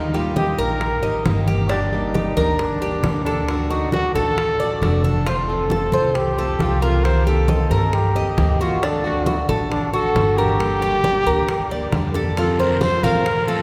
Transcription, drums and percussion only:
0.14 high bongo soft
0.14 high conga soft
0.37 high bongo medium
0.37 high conga medium
0.59 high bongo soft
0.59 high conga soft
0.81 high bongo medium
0.81 high conga soft
1.03 high conga soft
1.26 high bongo medium
1.26 low bongo medium
1.26 high conga medium
1.47 high bongo soft
1.47 high conga medium
1.70 high bongo medium
1.70 high conga soft
1.93 high conga soft
2.15 high bongo medium
2.15 high conga medium
2.37 high conga medium
2.59 high bongo medium
2.59 high conga soft
2.82 high conga soft
3.04 high bongo medium
3.04 low bongo medium
3.04 high conga medium
3.48 high bongo medium
3.48 high conga soft
3.71 high bongo soft
3.71 high conga soft
3.92 high bongo medium
3.92 high conga medium
4.15 high bongo soft
4.15 high conga soft
4.37 high bongo medium
4.37 high conga soft
4.60 high conga soft
4.82 high bongo medium
4.82 low bongo medium
4.82 high conga medium
5.04 high bongo soft
5.04 high conga medium
5.26 high bongo medium
5.26 high conga soft
5.48 high conga soft
5.70 high bongo medium
5.70 high conga medium
5.92 high conga medium
6.15 high bongo medium
6.15 high conga soft
6.37 high conga soft
6.59 high bongo medium
6.59 low bongo medium
6.59 high conga medium
7.04 high bongo medium
7.04 high conga soft
7.26 high bongo soft
7.26 high conga soft
7.48 high bongo medium
7.48 high conga medium
7.71 high bongo soft
7.71 high conga soft
7.93 high bongo medium
7.93 high conga soft
8.16 high conga soft
8.38 high bongo medium
8.38 low bongo medium
8.38 high conga medium
8.60 high bongo soft
8.82 high bongo medium
8.82 high conga soft
9.04 high conga soft
9.26 high bongo medium
9.26 high conga medium
9.49 high conga medium
9.72 high bongo medium
9.72 high conga soft
9.94 high conga soft
10.16 high bongo medium
10.16 low bongo medium
10.16 high conga medium
10.60 high bongo medium
10.60 high conga soft
10.82 high bongo soft
10.82 high conga soft
11.04 high bongo medium
11.04 high conga medium
11.26 high bongo soft
11.26 high conga soft
11.47 high bongo medium
11.47 high conga soft
11.70 high conga soft
11.92 high bongo medium
11.92 low bongo medium
11.92 high conga medium
12.14 high bongo medium
12.37 high bongo medium
12.37 high conga soft
12.37 long guiro medium
12.60 high conga soft
12.81 high bongo medium
12.81 high conga medium
12.81 short guiro medium
13.03 high conga medium
13.03 short guiro medium
13.26 high bongo medium
13.26 high conga soft
13.26 long guiro medium
13.48 high conga soft

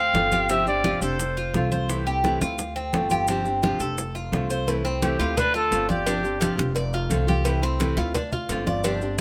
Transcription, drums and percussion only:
0.14 high bongo medium
0.14 low bongo medium
0.14 high conga medium
0.14 maracas soft
0.32 high bongo soft
0.32 high conga medium
0.32 maracas medium
0.49 high bongo medium
0.49 maracas medium
0.67 high bongo soft
0.67 high conga soft
0.67 maracas soft
0.84 high bongo medium
0.84 high conga medium
0.84 maracas soft
1.02 high conga soft
1.02 maracas medium
1.19 high bongo medium
1.19 high conga soft
1.19 maracas medium
1.37 high bongo soft
1.37 high conga soft
1.37 maracas soft
1.54 high bongo medium
1.54 low bongo medium
1.54 high conga medium
1.54 maracas soft
1.72 high conga medium
1.72 maracas medium
1.89 high bongo medium
1.89 high conga soft
1.89 maracas medium
2.07 high bongo soft
2.07 high conga soft
2.07 maracas soft
2.24 high bongo medium
2.24 high conga medium
2.24 maracas soft
2.42 high conga medium
2.42 maracas medium
2.58 high bongo medium
2.58 high conga soft
2.58 maracas medium
2.76 high bongo soft
2.76 high conga soft
2.76 maracas soft
2.93 high bongo medium
2.93 low bongo medium
2.93 high conga medium
2.93 maracas soft
3.10 high bongo soft
3.10 high conga medium
3.10 maracas medium
3.27 high bongo medium
3.27 high conga soft
3.27 maracas medium
3.45 high bongo soft
3.45 high conga soft
3.45 maracas soft
3.62 high bongo medium
3.62 high conga medium
3.62 maracas soft
3.80 high conga soft
3.80 maracas medium
3.98 high bongo medium
3.98 high conga soft
3.98 maracas medium
4.16 high bongo soft
4.16 high conga soft
4.16 maracas soft
4.33 high bongo medium
4.33 low bongo medium
4.33 high conga medium
4.33 maracas soft
4.50 maracas medium
4.68 cowbell loud
4.68 high conga soft
4.68 maracas medium
4.85 high conga soft
4.85 maracas soft
5.02 cowbell medium
5.02 high conga loud
5.02 maracas medium
5.20 cowbell medium
5.20 high conga soft
5.20 maracas soft
5.37 cowbell loud
5.37 high conga soft
5.37 low conga medium
5.37 maracas medium
5.55 high conga soft
5.55 maracas soft
5.72 cowbell medium
5.72 high conga soft
5.72 maracas medium
5.90 high conga medium
5.90 maracas soft
6.07 cowbell loud
6.07 high conga soft
6.07 maracas medium
6.25 high conga soft
6.25 maracas soft
6.41 cowbell medium
6.41 high conga loud
6.41 maracas medium
6.59 high conga medium
6.59 maracas soft
6.76 cowbell loud
6.76 high conga soft
6.76 maracas medium
6.93 high conga soft
6.93 maracas soft
7.11 cowbell medium
7.11 high conga medium
7.11 maracas medium
7.28 high conga medium
7.28 maracas soft
7.45 cowbell loud
7.45 maracas medium
7.63 high conga soft
7.63 maracas soft
7.80 cowbell medium
7.80 high conga loud
7.80 maracas medium
7.97 cowbell medium
7.97 high conga soft
7.97 maracas soft
8.14 cowbell loud
8.14 high conga soft
8.14 low conga medium
8.14 maracas medium
8.32 high conga soft
8.32 low conga medium
8.32 maracas soft
8.49 cowbell medium
8.49 high conga soft
8.49 maracas medium
8.67 high conga medium
8.67 maracas soft
8.84 cowbell loud
8.84 high conga soft
8.84 maracas medium
9.01 high conga soft
9.01 maracas soft

